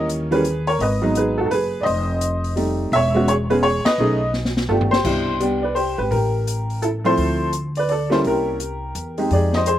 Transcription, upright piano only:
Already playing: E3 G3 A#3 C#4
0.31 E3 G3 A#3 C#4 B4
0.35 G#4
0.67 A#4 C#5
0.81 B4 D#5
1.02 F#3 G#3 B3 D#4
1.17 G#4 B4
1.38 F#4 A4
1.46 A4
1.51 G#4 B4
1.81 D5 D#5
1.85 C5
2.56 G3 A3 C4 D#4
2.93 C#5 E5
3.14 G#3 B3 C#4 F#4
3.28 G#4 C#5
3.50 G#3 B3 C#4 G#4 B4
3.63 G#4 C#5
3.85 B4 D#5
3.99 A3 C#4 D#4 G#4
4.69 A3 B3 D4 F4 G4 A4
4.91 G4 C5
5.04 B2 G3 D4 E4
5.40 G3 B3 D4 G4
5.62 B4 D5
5.75 G4 C5
5.98 G4 B4
6.11 G4 A#4
6.82 E4 A4
7.04 F3 A3 C4 E4 C5
7.08 A4
7.77 B4 D5
7.89 A4 D5
8.10 G3 A#3 C#4 E4 A4 C5
8.27 G4 A#4
9.18 G#3 C4 D#4 G4
9.32 G#4 D5
9.55 C5 D#5
9.67 G#4 C5

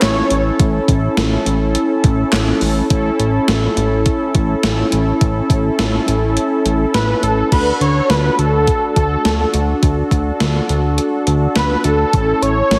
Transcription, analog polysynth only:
Already playing: C#4 E4 A4
2.90 C#4 E4 A4
7.52 D4 F#4 A4
12.13 C#4 E4 A4

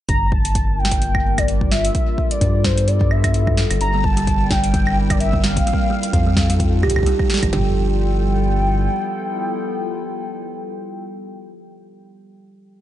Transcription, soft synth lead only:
0.09 A#5
0.32 A5
0.79 G5
1.38 D5
1.72 E5
2.31 D5
2.65 C5
2.88 D5
3.11 E5
3.81 A#5
4.04 A5
4.51 G5
5.10 D5
5.21 E5
5.44 F5
7.53 G5

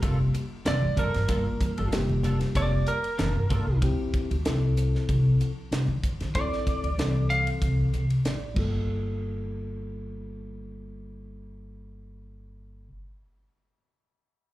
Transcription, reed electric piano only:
Already playing: G3 A#3 F4 G4
1.28 G3 A#3 F4 A#4
1.92 G3 A#3 F4 G4
3.83 F3 C4 E4 G4
4.45 F3 C4 E4 A4
6.36 F3 C4 E4 A4
6.98 E3 F3 C4 A4
8.25 D5
8.54 G3 A#3 F4
8.59 A4

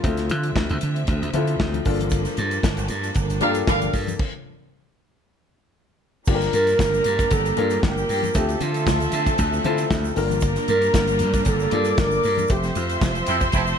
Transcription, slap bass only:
0.04 D2
0.31 D3
0.56 D2
0.70 D2
0.83 D3
1.08 D2
1.22 D2
1.34 D3
1.60 D2
1.86 G1
2.38 G2
2.64 G1
2.78 G1
2.90 G2
3.16 G1
3.30 G1
3.42 G2
3.67 G1
3.94 G2
6.27 G1
6.53 G2
6.79 G1
7.05 G2
7.31 G1
7.58 G2
7.83 G1
8.09 G2
8.35 D2
8.61 D3
8.87 D2
9.13 D3
9.39 D2
9.65 D3
9.91 D2
10.17 G1
10.68 G2
10.94 G1
11.20 G2
11.46 G1
11.72 G2
11.98 G1
12.25 G2
12.50 F1
12.76 F2
13.01 F1
13.28 F2
13.53 F1

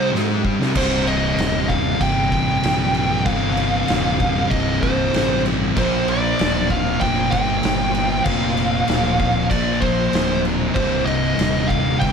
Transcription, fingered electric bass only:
0.76 C1
1.38 D#1
2.01 G1
2.32 A1
2.64 A#1
3.26 G1
3.89 D#1
4.51 C1
5.14 A1
5.77 A#1
6.40 D1
7.02 F1
7.33 G1
7.64 G1
8.26 F1
8.88 D1
9.51 A#1
10.13 D1
10.76 C1
11.38 D#1
12.02 G1

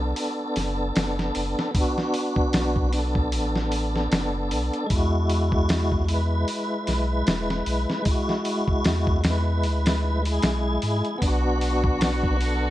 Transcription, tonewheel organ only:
Already playing: B3 D4 A4
1.71 B3
1.76 D4
1.80 F#4
2.89 B3
2.94 D4
2.99 A4
4.86 G#3
4.91 E4
4.96 F#4
6.04 G#3
6.09 E4
6.14 B4
8.02 G#3
8.07 E4
8.11 F#4
9.21 G#3
9.26 E4
9.30 B4
10.22 G#3
10.27 E4
10.32 G#4
11.18 B3
11.23 D4
11.28 F#4
12.36 B3
12.41 D4
12.46 A4

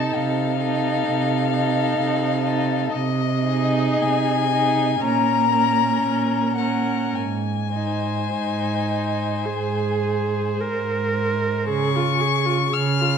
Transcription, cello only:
0.15 C3
1.08 C3
1.99 C3
2.93 C3
4.01 C3
5.01 A#2
6.03 A#2
7.14 G#2
8.31 G#2
9.45 G#2
10.58 G#2
11.68 C#3
12.73 C#3

